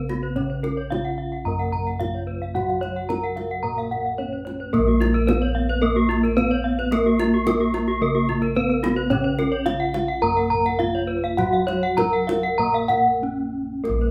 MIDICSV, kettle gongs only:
0, 0, Header, 1, 2, 480
1, 0, Start_track
1, 0, Tempo, 547945
1, 315, Time_signature, 4, 2, 24, 8
1, 8956, Tempo, 585938
1, 10396, Tempo, 626959
1, 12025, End_track
2, 0, Start_track
2, 0, Title_t, "Kettle gongs"
2, 0, Program_c, 0, 14
2, 0, Note_on_c, 0, 49, 71
2, 315, Note_on_c, 0, 61, 67
2, 757, Note_off_c, 0, 49, 0
2, 798, Note_on_c, 0, 59, 44
2, 868, Note_off_c, 0, 59, 0
2, 1274, Note_on_c, 0, 42, 69
2, 1717, Note_off_c, 0, 61, 0
2, 1754, Note_on_c, 0, 59, 44
2, 1824, Note_off_c, 0, 59, 0
2, 2235, Note_on_c, 0, 66, 69
2, 2675, Note_off_c, 0, 42, 0
2, 2711, Note_on_c, 0, 59, 53
2, 2781, Note_off_c, 0, 59, 0
2, 3187, Note_on_c, 0, 46, 60
2, 3635, Note_off_c, 0, 66, 0
2, 3671, Note_on_c, 0, 59, 51
2, 3741, Note_off_c, 0, 59, 0
2, 4149, Note_on_c, 0, 70, 80
2, 4195, Note_on_c, 0, 34, 102
2, 4590, Note_off_c, 0, 46, 0
2, 4629, Note_on_c, 0, 59, 40
2, 4699, Note_off_c, 0, 59, 0
2, 5550, Note_off_c, 0, 70, 0
2, 5589, Note_on_c, 0, 59, 49
2, 5659, Note_off_c, 0, 59, 0
2, 6063, Note_on_c, 0, 70, 69
2, 6543, Note_on_c, 0, 59, 52
2, 6613, Note_off_c, 0, 59, 0
2, 7010, Note_off_c, 0, 34, 0
2, 7019, Note_on_c, 0, 49, 64
2, 7465, Note_off_c, 0, 70, 0
2, 7509, Note_on_c, 0, 59, 47
2, 7579, Note_off_c, 0, 59, 0
2, 7981, Note_on_c, 0, 61, 63
2, 8427, Note_off_c, 0, 49, 0
2, 8467, Note_on_c, 0, 59, 54
2, 8537, Note_off_c, 0, 59, 0
2, 8957, Note_on_c, 0, 42, 59
2, 9394, Note_off_c, 0, 61, 0
2, 9431, Note_on_c, 0, 59, 44
2, 9496, Note_off_c, 0, 59, 0
2, 9906, Note_on_c, 0, 66, 68
2, 10364, Note_off_c, 0, 42, 0
2, 10394, Note_on_c, 0, 59, 41
2, 10455, Note_off_c, 0, 59, 0
2, 10863, Note_on_c, 0, 46, 64
2, 11311, Note_off_c, 0, 66, 0
2, 11341, Note_on_c, 0, 59, 47
2, 11402, Note_off_c, 0, 59, 0
2, 11823, Note_on_c, 0, 70, 62
2, 11860, Note_on_c, 0, 34, 100
2, 12025, Note_off_c, 0, 34, 0
2, 12025, Note_off_c, 0, 46, 0
2, 12025, Note_off_c, 0, 70, 0
2, 12025, End_track
0, 0, End_of_file